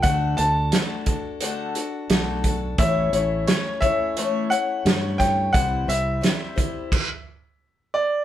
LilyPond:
<<
  \new Staff \with { instrumentName = "Grand piano" } { \time 4/4 \key a \dorian \tempo 4 = 87 fis''8 a''2 r4. | e''4 cis''8 e''4 fis''4 g''8 | fis''8 e''2 r4 d''8 | }
  \new Staff \with { instrumentName = "Steel-string acoustic guitar" } { \time 4/4 \key a \dorian <d a d' fis' a'>8 <d' fis' a'>8 <a d' fis' a'>8 <d' fis' a'>8 <d a d' fis' a'>8 <d' fis' a'>8 <a d' fis' a'>8 <d' fis' a'>8 | <a, e a cis' e' cis''>8 <a cis' e' cis''>8 <a cis' e' cis''>8 <a cis' e' cis''>8 <a, e a cis' e' cis''>8 <a cis' e' cis''>8 <a cis' e' cis''>8 <a cis' e' cis''>8 | <c e g c' e' c''>8 <g c' e' c''>8 <g c' e' c''>8 <g c' e' c''>8 r2 | }
  \new Staff \with { instrumentName = "Fingered electric bass" } { \clef bass \time 4/4 \key a \dorian d,8 d,8 r2 b,,4 | a,,8 a,,8 r2 g,4 | c,8 c,8 r2. | }
  \new DrumStaff \with { instrumentName = "Drums" } \drummode { \time 4/4 <hh bd>8 hh8 <hh sn>8 <hh bd>8 hh8 hh8 <hh sn>8 <hh bd>8 | <hh bd>8 hh8 <hh sn>8 <hh bd>8 hh8 hh8 <hh sn>8 <hh bd sn>8 | <hh bd>8 hh8 <hh sn>8 <hh bd>8 <cymc bd>4 r4 | }
>>